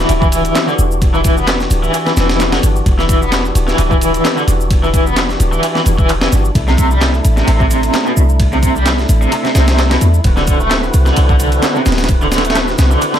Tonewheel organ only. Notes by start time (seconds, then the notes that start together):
Already playing: E3 D4 F#4 G4
6.55 A3 E4
10.24 D3 C4 F#4 B4